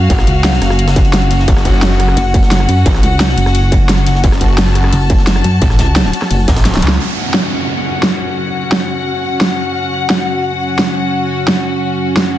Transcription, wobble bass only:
0.27 C#2
0.62 F#1
2.17 F#1
2.69 F#2
3.03 C#2
3.38 F#1
4.93 F#1
5.45 F#2
5.79 C#2
6.31 F#1

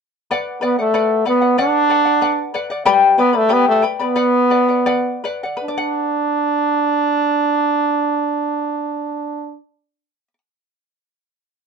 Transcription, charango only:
0.31 B4 D5 F#5
0.61 B4 D5 F#5
0.79 D5 F#5
0.94 B4 D5 F#5
1.25 B4 D5 F#5
1.41 D5 F#5
1.58 B4 D5 F#5
1.89 B4 D5 F#5
2.05 D5 F#5
2.21 B4 D5 F#5
2.54 B4 D5 F#5
2.70 D5 F#5
2.85 G4 B4 D5 G5 B5
3.18 B4 D5 G5 B5
3.33 B4 D5 B5
3.49 G4 B4 D5 G5 B5
3.82 B4 D5 G5 B5
4.00 B4 D5 B5
4.16 B4 D5 F#5
4.50 B4 D5 F#5
4.68 D5 F#5
4.86 B4 D5 F#5
5.24 B4 D5 F#5
5.43 D5 F#5
5.57 B4
5.68 D5
5.78 F#5

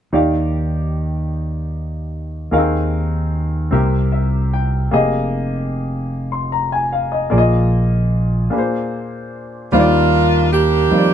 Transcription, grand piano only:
0.13 D#3 D#4 G4 D5 F5
2.51 D#3 A#3 G#4 A#4 F5
2.58 C4
3.71 C3 C4 G4 A#4 E5
4.12 E5
4.53 G5
4.91 A#3 G4 G#4 D#5
6.32 C6
6.52 A#5
6.72 G#5
6.93 F5
7.12 D#5
7.30 A#2 A#3 F4 G#4 D5
7.38 D#5
8.50 A#2 A#3 D4 G#4 B4
8.58 C5
9.72 D#3 G3 D4 F4 C5
9.80 D5
10.90 D#3 G3 F4 C5
10.98 D5

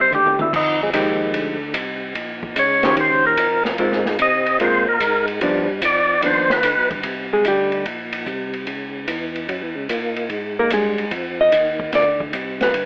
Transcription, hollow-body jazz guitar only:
0.93 F3 G#3 D#4 G4
2.84 D#3 C#4 G4 C5
3.79 G#3 C4 F4 A#4
4.60 G#3 C4 F4 A#4
5.41 F3 B3 D4
6.23 F3 B3 D4
7.33 G#3 G#4
7.48 G3 G4
10.59 A#3 A#4
10.73 G#3 G#4
11.41 D#5
11.95 D5
12.63 B4

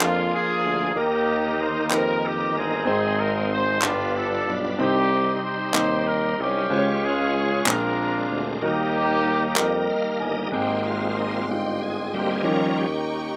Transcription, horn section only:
0.04 F4
0.35 F4 G#4
0.99 A#3 D#4 G4
1.62 C5
1.95 A#4
2.26 G4
2.58 C4 D#4 G#4
3.20 A#4
3.53 C5
3.86 B3 D4 F4
4.17 A4
4.81 C4 D#4 G4
5.44 D#4 G4 C5
6.08 A#4
6.42 C#4 G4
7.05 C#4 F4 G#4
7.70 D4 F4 A#4
8.64 A#3 D#4 G4

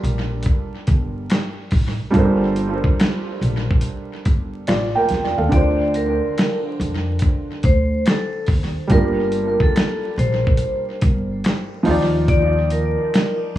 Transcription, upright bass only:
0.03 A#1
0.88 G1
1.72 A1
2.14 G1
3.41 A#1
4.26 G1
4.68 A1
5.10 E2
5.38 D#2
5.53 D2
6.80 F2
7.64 D2
8.48 D#2
8.90 G1
10.18 A#1
11.03 G1
11.87 D#2

